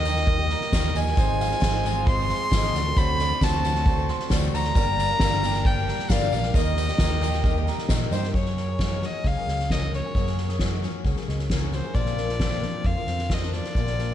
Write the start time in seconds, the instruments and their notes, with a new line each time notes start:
Already playing: fingered electric bass D#2, felt piano D#2 D#3 G3 A#3 D#4 A#4 D#5, upright piano A#4 D#5, fiddle D#5
0.05 twelve-string acoustic guitar D#3 A#3 D#4 G4, upright piano G5, snare, tambourine
0.16 snare
0.26 felt piano G3 A#3 D#4 A#4 D#5, upright piano A#4, kick, snare, tambourine
0.39 twelve-string acoustic guitar A#3 D#4 G4
0.49 upright piano A#5, snare
0.61 snare
0.72 fingered electric bass D#2, twelve-string acoustic guitar D#3 A#3 D#4 G4, felt piano G3 A#3 D#4 A#4 D#5, kick, snare, tambourine
0.94 fingered electric bass D#2, twelve-string acoustic guitar D#3 A#3 D#4 G4, upright piano D#5, fiddle G#5, snare, tambourine
1.06 twelve-string acoustic guitar A#3 D#4 G4, snare
1.16 fingered electric bass G#1, felt piano G#1 G#2 F3 C4 D#4 G#4 D#5, twelve-string acoustic guitar G#2 D#3 F3 G#3 C4 G#4, string section G#3 F4 C5, upright piano C5, kick, snare, tambourine
1.39 felt piano F3 C4 D#4 G#4 D#5, upright piano F5, snare, tambourine
1.50 twelve-string acoustic guitar F3 G#3 C4 G#4, snare
1.60 fingered electric bass G#1, twelve-string acoustic guitar G#2 D#3 F3 G#3 C4 G#4, felt piano F3 C4 D#4 G#4, upright piano C5, kick, snare, tambourine
1.64 felt piano D#5
1.84 twelve-string acoustic guitar F3 G#3 C4 G#4, upright piano G#5, snare, tambourine
2.06 felt piano F3 C4 D#4 G#4 D#5, upright piano C5, fiddle C6, kick, snare, tambourine
2.19 twelve-string acoustic guitar F3 G#3 C4 G#4
2.29 upright piano C6, snare
2.51 fingered electric bass G#1, twelve-string acoustic guitar G#2 D#3 F3 G#3 C4 G#4, felt piano F3 C4 D#4 G#4 D#5, kick, snare, tambourine
2.63 snare
2.72 fingered electric bass D2, felt piano D2 D3 F#3 C4 D4 A4, string section D3 C4 F#4, twelve-string acoustic guitar F#3 A3 C4, upright piano D5, snare, tambourine
2.76 twelve-string acoustic guitar A4, felt piano D5
2.87 twelve-string acoustic guitar A3 C4 A4
2.96 fingered electric bass D2, twelve-string acoustic guitar D3 F#3 A3 C4 A4, upright piano C5, fiddle B5, kick, snare, tambourine
3.18 felt piano F#3 C4 D4 A4 D5, upright piano D5, snare, tambourine
3.32 twelve-string acoustic guitar A3 C4 A4
3.41 fingered electric bass D2, twelve-string acoustic guitar D3 F#3 A3 C4 A4, felt piano F#3 C4 D4 A4 D5, upright piano C5, fiddle A5, kick, snare, tambourine
3.64 twelve-string acoustic guitar F#3 A3 C4 A4, upright piano F#5, snare, tambourine
3.75 snare
3.85 felt piano F#3 C4 D4 A4 D5, upright piano C5, kick, snare, tambourine
3.98 twelve-string acoustic guitar A3 C4 A4
4.08 upright piano C6, snare
4.19 snare
4.30 fingered electric bass D2, twelve-string acoustic guitar D3 F#3 A3 C4 A4, felt piano F#3 C4 D4 A4 D5, kick, snare, tambourine
4.53 fingered electric bass D2, twelve-string acoustic guitar F#3 A3 C4 A4, upright piano D5, fiddle A#5, snare, tambourine
4.64 twelve-string acoustic guitar C4 A4, snare
4.68 twelve-string acoustic guitar A3
4.75 fingered electric bass G1, felt piano G1 G2 G3 A#3 D4 A#4 D5, twelve-string acoustic guitar G2 D3 G3 A#3 D4 G4, string section G3 D4 A#4, upright piano A#4, kick, snare, tambourine
4.98 felt piano G3 A#3 D4 A#4 F5, upright piano D5, snare, tambourine
5.09 twelve-string acoustic guitar G3 A#3 D4 G4
5.19 fingered electric bass G1, twelve-string acoustic guitar G2 D3 G3 A#3, felt piano G3 A#3 D4 A#4 F5, upright piano A#4, kick, snare, tambourine
5.23 twelve-string acoustic guitar D4 G4
5.42 twelve-string acoustic guitar G3 A#3 D4 G4, upright piano G5, snare, tambourine
5.54 snare
5.64 felt piano G3 A#3 D4 A#4 C5, upright piano A#4, fiddle G5, kick, snare, tambourine
5.76 twelve-string acoustic guitar G3 A#3 D4 G4
5.87 upright piano A#5, snare
5.99 snare
6.09 fingered electric bass G1, twelve-string acoustic guitar G2 D3 G3 A#3 D4 G4, felt piano G3 A#3 D4 A#4 D5, fiddle F5, kick, snare, tambourine
6.32 fingered electric bass A#1, twelve-string acoustic guitar G3, upright piano D5, snare, tambourine
6.36 twelve-string acoustic guitar A#3 D4 G4
6.43 twelve-string acoustic guitar A#3 D4 G4, snare
6.47 twelve-string acoustic guitar G3
6.54 fingered electric bass D#2, felt piano D#2 D#3 G3 A#3 D#4 A#4 D#5, twelve-string acoustic guitar D#3 A#3 D#4 G4, string section D#3 A#3 G4, upright piano A#4, fiddle D#5, kick, snare, tambourine
6.76 felt piano G3 A#3 D#4 A#4 C5, upright piano D#5, snare, tambourine
6.88 twelve-string acoustic guitar D#4 G4, snare
6.92 twelve-string acoustic guitar A#3
6.98 fingered electric bass D#2, twelve-string acoustic guitar D#3 A#3 D#4, felt piano G3 A#3 D#4 A#4, upright piano A#4, kick, snare, tambourine
7.03 twelve-string acoustic guitar G4
7.21 twelve-string acoustic guitar D#3 A#3 D#4 G4, upright piano G5, snare, tambourine
7.33 snare
7.44 felt piano G3 A#3 D#4 A#4 D#5, upright piano A#4, kick, snare, tambourine
7.57 twelve-string acoustic guitar A#3 D#4 G4
7.66 upright piano A#5, snare, tambourine
7.78 snare
7.88 fingered electric bass A#2, twelve-string acoustic guitar D#3 A#3 D#4 G4, felt piano G3 A#3 D#4 A#4 D#5, kick, snare, tambourine
8.01 snare
8.11 fingered electric bass G2, twelve-string acoustic guitar D#3 A#3 D#4 G4, fiddle C5, upright piano D#5, snare, tambourine
8.22 twelve-string acoustic guitar A#3 D#4 G4, snare
8.33 steel-string acoustic guitar F#2, fingered electric bass F#2, twelve-string acoustic guitar F#3 A#3 C#4 G#4, fiddle C#5, kick, snare
8.45 snare
8.57 steel-string acoustic guitar A#4, snare
8.68 twelve-string acoustic guitar A#3 C#4 G#4
8.78 twelve-string acoustic guitar F#3 A#3 C#4 G#4, steel-string acoustic guitar G#3, kick, snare
9.01 twelve-string acoustic guitar F#3 A#3 C#4 G#4, steel-string acoustic guitar F#3, snare
9.05 fiddle D#5
9.24 fingered electric bass C#2, steel-string acoustic guitar C#3, twelve-string acoustic guitar F#3 A#3 C#4 G#4, fiddle F5, kick, snare
9.37 twelve-string acoustic guitar A#3 C#4 G#4
9.47 fingered electric bass C#2, steel-string acoustic guitar G#3, snare
9.59 snare
9.70 twelve-string acoustic guitar F#3 A#3 C#4 G#4, steel-string acoustic guitar A#4, fiddle D#5, kick, snare
9.81 twelve-string acoustic guitar A#3 C#4 G#4
9.93 twelve-string acoustic guitar F#3 A#3 C#4 G#4, steel-string acoustic guitar A#4, fiddle C#5, snare
10.06 twelve-string acoustic guitar A#3 C#4 G#4
10.15 fingered electric bass F#2, steel-string acoustic guitar F#2, twelve-string acoustic guitar F#3 A#3 C#4 G#4, kick, snare
10.26 snare
10.37 steel-string acoustic guitar A#4, snare
10.48 twelve-string acoustic guitar A#3 C#4 G#4, snare
10.59 twelve-string acoustic guitar F#3 A#3 C#4 G#4, steel-string acoustic guitar G#3, kick, snare
10.82 twelve-string acoustic guitar F#3 A#3 C#4 G#4, steel-string acoustic guitar F#3, snare
11.04 fingered electric bass C#2, steel-string acoustic guitar C#3, twelve-string acoustic guitar F#3 A#3 C#4 G#4, kick, snare
11.16 twelve-string acoustic guitar A#3 C#4 G#4, snare
11.28 fingered electric bass C#2, steel-string acoustic guitar G#3, snare
11.39 snare
11.50 twelve-string acoustic guitar F#3 A#3 C#4 G#4, steel-string acoustic guitar A#4, kick, snare
11.72 twelve-string acoustic guitar F#3 A#3 C#4 G#4, steel-string acoustic guitar A#4, fiddle C5, snare
11.84 twelve-string acoustic guitar A#3 C#4 G#4
11.94 fingered electric bass A#1, steel-string acoustic guitar A#2, twelve-string acoustic guitar A#2 D3 F3 A#3 C4 F4, fiddle D5, kick, snare
12.05 snare
12.17 steel-string acoustic guitar D4, snare
12.28 twelve-string acoustic guitar F3 A#3 C4 F4, snare
12.39 twelve-string acoustic guitar A#2 D3 F3 A#3 C4 F4, steel-string acoustic guitar C4, kick, snare
12.51 snare
12.60 twelve-string acoustic guitar F3 A#3 C4 F4, steel-string acoustic guitar F3, snare
12.83 fingered electric bass F2, steel-string acoustic guitar F2, twelve-string acoustic guitar F3 A#3 C4 F4, fiddle F5, kick, snare
12.96 twelve-string acoustic guitar F3 A#3 C4 F4
13.06 fingered electric bass F2, steel-string acoustic guitar C4, snare
13.19 snare
13.30 twelve-string acoustic guitar A#2 D3 F3 A#3 C4 F4, steel-string acoustic guitar C4, fiddle D#5, kick, snare
13.42 twelve-string acoustic guitar F3 A#3 C4 F4, steel-string acoustic guitar D4
13.52 twelve-string acoustic guitar F3 A#3 C4 F4, steel-string acoustic guitar F4, fiddle D5, snare
13.64 twelve-string acoustic guitar F3 A#3 C4 F4, snare
13.75 fingered electric bass A#1, twelve-string acoustic guitar A#2 D3 F3 A#3 C4 F4, steel-string acoustic guitar A#2, kick, snare
13.86 snare
13.98 steel-string acoustic guitar D4, snare
14.10 twelve-string acoustic guitar F4